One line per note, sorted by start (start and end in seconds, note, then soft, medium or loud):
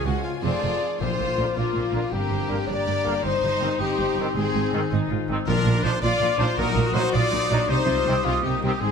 0.00 0.40 C#3 loud
0.00 0.44 C#3 medium
0.00 0.39 F3 medium
0.00 0.38 G#3 medium
0.00 0.21 C#4 medium
0.00 0.43 F4 medium
0.00 0.44 G#4 medium
0.00 0.42 C#5 medium
0.00 0.43 G#5 medium
0.04 0.12 C#2 medium
0.04 0.14 C#2 medium
0.04 0.14 G#3 medium
0.04 0.23 F#4 medium
0.04 0.24 F#4 loud
0.04 0.24 F#5 medium
0.22 0.44 C#4 medium
0.22 1.37 F4 medium
0.22 0.32 F4 medium
0.22 0.44 F4 loud
0.22 0.31 F5 medium
0.41 0.50 F2 medium
0.41 0.78 D#3 medium
0.41 1.08 F3 medium
0.41 0.78 A3 medium
0.41 0.96 F4 loud
0.41 0.99 G#4 loud
0.41 0.71 C5 medium
0.41 0.96 D5 medium
0.41 0.96 D5 loud
0.41 1.02 D5 loud
0.41 0.99 G#5 medium
0.41 0.81 A5 medium
0.45 0.53 F1 loud
0.45 0.62 C4 medium
0.45 0.82 D#4 medium
0.61 0.71 F1 medium
0.61 0.70 F2 medium
0.61 0.71 A3 medium
0.61 0.80 C4 medium
0.80 2.14 C4 medium
0.80 1.02 D#4 medium
0.98 1.09 A#1 medium
0.98 2.14 A#2 medium
0.98 1.08 A#2 medium
0.98 1.53 A#2 loud
0.98 1.55 F4 loud
0.98 2.12 F4 medium
0.98 1.55 C5 loud
0.98 1.57 C5 medium
0.98 1.56 C5 loud
0.98 2.08 D6 medium
1.09 2.14 F3 medium
1.19 1.28 A#1 medium
1.19 1.26 A#2 medium
1.19 2.01 A#3 medium
1.28 1.92 D4 medium
1.37 1.46 A#1 medium
1.37 1.44 A#2 medium
1.37 1.44 D3 medium
1.37 1.45 A#3 medium
1.37 1.83 F4 medium
1.48 1.74 A#4 medium
1.54 1.65 A#1 medium
1.54 1.64 A#2 medium
1.54 2.11 A#3 loud
1.54 1.74 D4 medium
1.54 2.10 F4 medium
1.54 2.11 F4 loud
1.54 2.67 D5 medium
1.58 2.12 F4 loud
1.66 2.14 F5 medium
1.74 1.83 A#1 medium
1.74 1.82 A#2 medium
1.74 1.93 C4 medium
1.74 2.58 A#4 medium
1.85 2.14 F4 medium
1.92 2.02 A#1 medium
1.92 2.00 A#2 medium
1.92 1.99 D3 medium
1.92 1.99 A#3 medium
1.92 2.39 D4 medium
1.92 2.12 D4 medium
2.02 2.30 A#3 medium
2.11 2.20 G1 medium
2.11 2.19 G2 medium
2.11 3.23 G2 medium
2.11 2.67 A#3 medium
2.11 2.66 C4 loud
2.11 3.23 D4 medium
2.11 2.68 G4 medium
2.11 2.68 G4 loud
2.11 2.67 G4 loud
2.11 3.24 A#5 medium
2.23 3.26 D3 medium
2.29 2.38 G1 medium
2.29 2.37 G2 medium
2.29 3.14 A#3 medium
2.40 3.04 D4 medium
2.48 2.57 G1 medium
2.48 2.57 G2 medium
2.48 2.55 D3 medium
2.48 2.55 A#3 medium
2.59 2.86 A#4 medium
2.67 2.76 G1 medium
2.67 2.75 G2 medium
2.67 3.24 A#3 medium
2.67 3.23 G4 loud
2.67 3.24 D5 loud
2.67 3.25 D5 loud
2.67 3.26 D5 medium
2.67 3.25 D5 loud
2.77 3.89 G5 medium
2.86 2.95 G1 medium
2.86 2.94 G2 medium
3.05 3.14 G1 medium
3.05 3.13 G2 medium
3.05 3.12 D3 medium
3.05 3.12 A#3 loud
3.15 3.26 A#3 medium
3.23 3.31 G1 loud
3.23 3.32 G2 medium
3.23 4.37 G2 medium
3.23 5.43 D#4 medium
3.23 3.80 D#4 loud
3.23 4.36 D#4 loud
3.23 3.81 C5 loud
3.23 3.79 C5 loud
3.23 5.19 C6 medium
3.33 4.37 G3 medium
3.42 3.50 G1 loud
3.42 3.49 G2 medium
3.53 4.17 D#4 medium
3.60 3.69 G1 medium
3.60 3.69 G2 medium
3.60 3.68 D#3 medium
3.60 3.67 C4 medium
3.60 4.08 G4 medium
3.72 3.98 C5 medium
3.79 3.87 G1 medium
3.79 3.87 G2 medium
3.79 4.35 C4 loud
3.79 4.35 G4 loud
3.79 4.92 D#5 medium
3.98 4.06 G1 medium
3.98 4.06 G2 medium
3.98 4.83 C5 medium
4.17 4.24 G1 medium
4.17 4.25 G2 medium
4.17 4.26 D#3 medium
4.17 4.25 C4 medium
4.17 4.64 D#4 medium
4.29 4.55 C4 medium
4.35 4.44 G#1 medium
4.35 4.43 G#2 medium
4.35 5.50 G#2 medium
4.35 4.91 C4 loud
4.35 4.92 C4 loud
4.35 4.90 G#4 loud
4.35 4.91 G#4 loud
4.35 4.92 G#4 loud
4.47 5.50 D#3 medium
4.54 4.62 G#1 medium
4.54 4.61 G#2 medium
4.54 5.38 C4 medium
4.65 5.29 D#4 medium
4.72 4.81 G#1 medium
4.72 4.81 G#2 medium
4.72 4.79 D#3 loud
4.72 4.79 C4 loud
4.84 5.10 C5 medium
4.92 5.00 G#1 loud
4.92 5.00 G#2 medium
4.92 5.10 D#4 loud
4.92 5.50 D#5 loud
5.02 5.49 G#5 medium
5.10 5.18 G#1 medium
5.10 5.18 G#2 loud
5.10 5.29 F4 medium
5.10 5.49 C5 medium
5.21 5.49 G#4 medium
5.29 5.37 G#1 medium
5.29 5.36 G#2 medium
5.29 5.36 D#3 loud
5.29 5.36 C4 loud
5.29 5.47 D#4 loud
5.29 5.49 D#4 medium
5.39 5.50 C4 medium
5.46 5.54 A#1 loud
5.46 5.55 A#2 loud
5.46 5.99 A#2 loud
5.46 6.58 A#2 medium
5.46 6.01 D4 loud
5.46 5.82 D4 loud
5.46 5.99 F4 loud
5.46 5.81 A#4 loud
5.46 5.84 A#4 loud
5.46 5.82 A#4 loud
5.46 5.99 D6 medium
5.59 6.61 F3 medium
5.65 5.73 A#1 loud
5.65 5.73 A#2 medium
5.65 6.48 A#3 medium
5.76 6.38 D4 medium
5.83 5.91 A#1 medium
5.83 5.91 A#2 medium
5.83 5.90 F3 medium
5.83 5.90 D4 loud
5.83 5.91 D#4 loud
5.83 6.29 F4 medium
5.83 6.01 C5 loud
5.83 6.03 C5 loud
5.83 6.04 C5 loud
5.96 6.20 A#4 medium
6.01 6.10 A#1 loud
6.01 6.10 A#2 loud
6.01 6.39 F4 loud
6.01 6.57 F4 loud
6.01 6.61 F4 loud
6.01 6.38 D5 loud
6.01 6.41 D5 loud
6.01 6.60 D5 medium
6.01 6.57 D6 loud
6.05 6.40 D5 loud
6.21 6.29 A#1 medium
6.21 6.29 A#2 loud
6.21 7.03 A#4 loud
6.31 6.60 F4 medium
6.38 6.46 A#1 loud
6.38 6.47 A#2 medium
6.38 6.45 F3 medium
6.38 6.45 D4 loud
6.38 6.60 D4 medium
6.38 6.46 D#4 loud
6.38 6.57 C5 loud
6.38 6.56 C5 loud
6.42 6.59 C5 loud
6.49 6.75 A#3 medium
6.57 6.65 A#1 loud
6.57 7.10 A#2 loud
6.57 6.66 A#2 loud
6.57 7.71 A#2 medium
6.57 6.94 D#4 loud
6.57 7.13 F#4 loud
6.57 7.72 F#4 loud
6.57 6.95 A#4 loud
6.57 6.96 A#4 loud
6.57 7.69 D#6 loud
6.68 7.71 F#3 medium
6.76 6.84 A#1 loud
6.76 6.84 A#2 loud
6.86 7.49 D#4 medium
6.93 7.02 A#1 loud
6.93 7.03 A#2 loud
6.93 7.01 F#3 loud
6.93 7.00 D#4 loud
6.93 7.13 D#4 loud
6.93 7.01 C5 loud
6.93 7.12 C5 loud
6.97 7.14 C5 loud
7.12 7.21 A#1 loud
7.12 7.20 A#2 loud
7.12 7.68 F4 loud
7.12 7.33 F4 loud
7.12 7.68 D5 loud
7.12 7.70 D5 loud
7.23 7.71 A#5 loud
7.32 7.40 A#1 loud
7.32 7.39 A#2 loud
7.32 7.51 D#4 loud
7.32 7.71 A#4 medium
7.41 7.71 F#4 medium
7.50 7.58 A#1 loud
7.50 7.57 A#2 medium
7.50 7.58 F#3 loud
7.50 7.69 D4 loud
7.50 7.57 D#4 loud
7.60 7.71 A#3 medium
7.68 7.76 C2 loud
7.68 7.76 C3 loud
7.68 8.84 C3 medium
7.68 8.24 D#4 loud
7.68 7.77 D#4 loud
7.68 8.66 G4 loud
7.68 8.24 C5 loud
7.68 8.26 C5 loud
7.68 8.80 D#6 loud
7.79 8.71 C4 medium
7.86 7.96 C2 loud
7.86 7.94 C3 loud
7.86 8.62 G3 medium
7.86 8.06 F4 loud
7.97 8.15 D#4 medium
8.05 8.15 C2 loud
8.05 8.13 C3 medium
8.05 8.13 D#3 loud
8.05 8.14 C4 loud
8.05 8.24 D#4 loud
8.05 8.43 G4 medium
8.16 8.53 D#4 medium
8.23 8.33 C2 loud
8.23 8.32 C3 medium
8.23 8.33 G#3 loud
8.23 8.82 D#4 loud
8.23 8.43 F4 loud
8.23 8.33 F4 loud
8.23 8.43 F4 loud
8.23 8.92 D#5 loud
8.34 8.83 G5 medium
8.42 8.52 C2 loud
8.42 8.50 C3 medium
8.42 8.63 A#3 medium
8.42 8.62 G4 medium
8.42 8.83 G4 medium
8.42 8.62 G4 loud
8.42 8.63 G4 loud
8.54 8.92 D#4 medium
8.62 8.70 C2 loud
8.62 8.70 C3 medium
8.62 8.71 D#3 medium
8.62 8.83 G3 medium
8.62 8.71 A#3 loud
8.62 8.70 C4 loud
8.62 8.82 G4 loud
8.62 8.82 G4 medium
8.62 8.72 G4 loud
8.73 8.92 C4 medium
8.80 8.89 G#1 medium
8.80 8.89 G#2 loud
8.80 8.92 G#2 medium
8.80 8.92 C4 loud
8.80 8.92 D#4 medium
8.80 8.92 G#4 loud
8.80 8.92 C6 loud